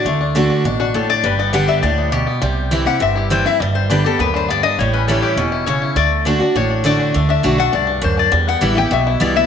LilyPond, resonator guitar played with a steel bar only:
\new Staff \with { instrumentName = "Resonator guitar played with a steel bar" } { \time 4/4 \key g \major \tempo 4 = 203 d''8 r2 fis'8 a'8 d''8 | b'8 d''8 fis''8 e''8 d''4.~ d''16 r16 | r4. fis''8 e''8 g'8 c''8 e''8 | d''8 c''8 b'8 a'8 b'8 c''8 d''8 ees''8 |
cis''8 b'8 a'8 g'4 r8 cis''4 | d''8 r4. cis''4 d''8 r8 | r8 e''4 fis''8 d''4 c''8 d''8 | r8 fis''4 g''8 e''4 d''8 e''8 | }